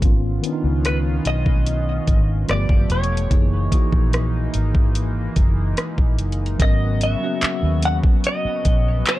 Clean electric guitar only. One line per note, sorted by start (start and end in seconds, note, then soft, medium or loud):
0.86 0.97 B4 medium
1.27 2.46 D#5 loud
2.51 2.91 D5 medium
2.92 4.51 C#5 medium
6.62 7.03 D#5 loud
7.03 7.85 E5 loud
7.85 7.96 F#5 loud
8.27 9.04 D#5 loud
9.09 9.19 C#5 medium